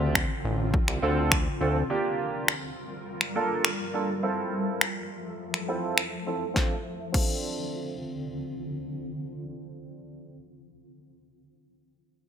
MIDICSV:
0, 0, Header, 1, 5, 480
1, 0, Start_track
1, 0, Key_signature, -1, "minor"
1, 0, Tempo, 582524
1, 1566, Time_signature, 4, 2, 24, 8
1, 10123, End_track
2, 0, Start_track
2, 0, Title_t, "Grand piano"
2, 0, Program_c, 0, 0
2, 0, Note_on_c, 0, 60, 83
2, 0, Note_on_c, 0, 62, 74
2, 0, Note_on_c, 0, 65, 75
2, 0, Note_on_c, 0, 67, 91
2, 126, Note_off_c, 0, 60, 0
2, 127, Note_off_c, 0, 62, 0
2, 128, Note_off_c, 0, 65, 0
2, 128, Note_off_c, 0, 67, 0
2, 844, Note_on_c, 0, 60, 83
2, 845, Note_on_c, 0, 62, 75
2, 846, Note_on_c, 0, 65, 79
2, 847, Note_on_c, 0, 69, 90
2, 1085, Note_off_c, 0, 60, 0
2, 1086, Note_off_c, 0, 62, 0
2, 1087, Note_off_c, 0, 65, 0
2, 1087, Note_off_c, 0, 69, 0
2, 1324, Note_on_c, 0, 60, 73
2, 1325, Note_on_c, 0, 62, 67
2, 1326, Note_on_c, 0, 65, 66
2, 1328, Note_on_c, 0, 69, 82
2, 1445, Note_off_c, 0, 60, 0
2, 1446, Note_off_c, 0, 62, 0
2, 1446, Note_off_c, 0, 65, 0
2, 1447, Note_off_c, 0, 69, 0
2, 1564, Note_on_c, 0, 58, 77
2, 1565, Note_on_c, 0, 62, 74
2, 1566, Note_on_c, 0, 65, 73
2, 1567, Note_on_c, 0, 67, 87
2, 2046, Note_off_c, 0, 58, 0
2, 2047, Note_off_c, 0, 62, 0
2, 2047, Note_off_c, 0, 65, 0
2, 2048, Note_off_c, 0, 67, 0
2, 2764, Note_on_c, 0, 58, 84
2, 2765, Note_on_c, 0, 62, 74
2, 2766, Note_on_c, 0, 65, 75
2, 2768, Note_on_c, 0, 69, 89
2, 3006, Note_off_c, 0, 58, 0
2, 3006, Note_off_c, 0, 62, 0
2, 3007, Note_off_c, 0, 65, 0
2, 3008, Note_off_c, 0, 69, 0
2, 3245, Note_on_c, 0, 58, 68
2, 3246, Note_on_c, 0, 62, 65
2, 3248, Note_on_c, 0, 65, 67
2, 3249, Note_on_c, 0, 69, 76
2, 3366, Note_off_c, 0, 58, 0
2, 3366, Note_off_c, 0, 62, 0
2, 3367, Note_off_c, 0, 65, 0
2, 3368, Note_off_c, 0, 69, 0
2, 3485, Note_on_c, 0, 60, 77
2, 3486, Note_on_c, 0, 64, 71
2, 3487, Note_on_c, 0, 65, 72
2, 3489, Note_on_c, 0, 69, 83
2, 3967, Note_off_c, 0, 60, 0
2, 3967, Note_off_c, 0, 64, 0
2, 3968, Note_off_c, 0, 65, 0
2, 3969, Note_off_c, 0, 69, 0
2, 4684, Note_on_c, 0, 60, 80
2, 4685, Note_on_c, 0, 64, 76
2, 4686, Note_on_c, 0, 65, 76
2, 4688, Note_on_c, 0, 69, 87
2, 4926, Note_off_c, 0, 60, 0
2, 4926, Note_off_c, 0, 64, 0
2, 4927, Note_off_c, 0, 65, 0
2, 4928, Note_off_c, 0, 69, 0
2, 5164, Note_on_c, 0, 60, 72
2, 5166, Note_on_c, 0, 64, 62
2, 5167, Note_on_c, 0, 65, 61
2, 5169, Note_on_c, 0, 69, 75
2, 5285, Note_off_c, 0, 60, 0
2, 5286, Note_off_c, 0, 64, 0
2, 5287, Note_off_c, 0, 65, 0
2, 5288, Note_off_c, 0, 69, 0
2, 5389, Note_on_c, 0, 60, 78
2, 5400, Note_on_c, 0, 62, 69
2, 5411, Note_on_c, 0, 65, 69
2, 5422, Note_on_c, 0, 69, 81
2, 5531, Note_off_c, 0, 60, 0
2, 5537, Note_off_c, 0, 62, 0
2, 5543, Note_off_c, 0, 65, 0
2, 5548, Note_off_c, 0, 69, 0
2, 5870, Note_on_c, 0, 60, 79
2, 5881, Note_on_c, 0, 62, 71
2, 5892, Note_on_c, 0, 65, 69
2, 5903, Note_on_c, 0, 69, 85
2, 8521, Note_off_c, 0, 60, 0
2, 8527, Note_off_c, 0, 62, 0
2, 8532, Note_off_c, 0, 65, 0
2, 8538, Note_off_c, 0, 69, 0
2, 10123, End_track
3, 0, Start_track
3, 0, Title_t, "Ambient pad"
3, 0, Program_c, 1, 92
3, 0, Note_on_c, 1, 50, 84
3, 0, Note_on_c, 1, 60, 75
3, 0, Note_on_c, 1, 65, 90
3, 1533, Note_off_c, 1, 50, 0
3, 1533, Note_off_c, 1, 60, 0
3, 1565, Note_on_c, 1, 70, 89
3, 1566, Note_on_c, 1, 55, 79
3, 3453, Note_off_c, 1, 65, 0
3, 3466, Note_off_c, 1, 55, 0
3, 3466, Note_off_c, 1, 70, 0
3, 3486, Note_on_c, 1, 53, 77
3, 3486, Note_on_c, 1, 69, 89
3, 3486, Note_on_c, 1, 76, 71
3, 5387, Note_off_c, 1, 53, 0
3, 5387, Note_off_c, 1, 69, 0
3, 5387, Note_off_c, 1, 76, 0
3, 5406, Note_on_c, 1, 50, 77
3, 5406, Note_on_c, 1, 60, 74
3, 5406, Note_on_c, 1, 65, 87
3, 7952, Note_off_c, 1, 50, 0
3, 7952, Note_off_c, 1, 60, 0
3, 7952, Note_off_c, 1, 65, 0
3, 10123, End_track
4, 0, Start_track
4, 0, Title_t, "Analog synth bass"
4, 0, Program_c, 2, 38
4, 0, Note_on_c, 2, 38, 107
4, 210, Note_off_c, 2, 38, 0
4, 367, Note_on_c, 2, 33, 94
4, 648, Note_off_c, 2, 33, 0
4, 727, Note_on_c, 2, 36, 90
4, 820, Note_off_c, 2, 36, 0
4, 846, Note_on_c, 2, 38, 101
4, 1222, Note_off_c, 2, 38, 0
4, 1326, Note_on_c, 2, 38, 91
4, 1514, Note_off_c, 2, 38, 0
4, 10123, End_track
5, 0, Start_track
5, 0, Title_t, "Drums"
5, 126, Note_on_c, 9, 36, 101
5, 127, Note_on_c, 9, 26, 101
5, 208, Note_off_c, 9, 36, 0
5, 210, Note_off_c, 9, 26, 0
5, 608, Note_on_c, 9, 36, 113
5, 690, Note_off_c, 9, 36, 0
5, 726, Note_on_c, 9, 26, 74
5, 808, Note_off_c, 9, 26, 0
5, 1085, Note_on_c, 9, 26, 113
5, 1086, Note_on_c, 9, 36, 102
5, 1167, Note_off_c, 9, 26, 0
5, 1169, Note_off_c, 9, 36, 0
5, 2047, Note_on_c, 9, 26, 100
5, 2129, Note_off_c, 9, 26, 0
5, 2645, Note_on_c, 9, 26, 70
5, 2727, Note_off_c, 9, 26, 0
5, 3004, Note_on_c, 9, 26, 105
5, 3087, Note_off_c, 9, 26, 0
5, 3967, Note_on_c, 9, 26, 98
5, 4049, Note_off_c, 9, 26, 0
5, 4565, Note_on_c, 9, 26, 69
5, 4648, Note_off_c, 9, 26, 0
5, 4924, Note_on_c, 9, 26, 104
5, 5007, Note_off_c, 9, 26, 0
5, 5406, Note_on_c, 9, 36, 96
5, 5406, Note_on_c, 9, 38, 76
5, 5488, Note_off_c, 9, 36, 0
5, 5488, Note_off_c, 9, 38, 0
5, 5886, Note_on_c, 9, 36, 101
5, 5886, Note_on_c, 9, 49, 79
5, 5968, Note_off_c, 9, 36, 0
5, 5968, Note_off_c, 9, 49, 0
5, 10123, End_track
0, 0, End_of_file